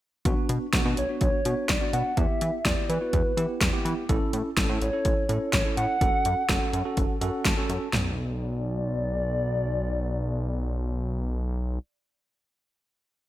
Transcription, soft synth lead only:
0.97 1.08 C#5 medium
1.22 1.66 C#5 loud
1.69 1.95 D5 loud
1.93 2.19 F#5 loud
2.17 2.65 E5 loud
2.65 2.91 D5 loud
2.89 3.85 B4 medium
4.81 5.49 C#5 loud
5.53 5.64 C#5 medium
5.77 7.41 F#5 loud
7.93 11.79 D5 loud

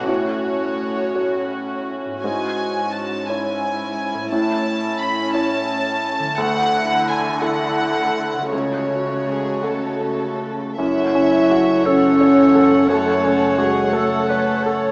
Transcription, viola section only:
0.00 3.29 F#4 medium
0.08 4.28 C#4 soft
3.29 6.37 E4 soft
4.33 6.34 C#4 soft
6.39 7.39 A3 soft
6.39 7.39 E4 medium
7.43 8.50 A3 medium
7.43 8.50 E4 medium
8.52 10.55 A3 soft
8.52 10.55 F#4 soft
10.79 14.92 A3 soft
10.79 14.92 C#5 medium

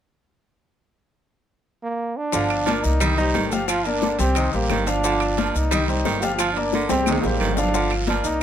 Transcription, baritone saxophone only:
2.33 2.51 D3 medium
2.66 2.84 F3 medium
3.00 3.18 G3 medium
3.35 3.52 D#3 medium
3.69 3.87 F3 medium
4.03 4.20 D3 medium
4.37 4.55 C3 medium
4.71 4.89 D#3 medium
5.05 5.22 D3 medium
5.38 5.56 F3 medium
5.71 5.89 G3 medium
6.05 6.23 D#3 medium
6.40 6.57 F3 medium
6.74 6.92 D3 medium
7.07 7.25 C3 medium
7.40 7.58 D#3 medium
7.75 7.92 D3 medium
8.09 8.27 F3 medium

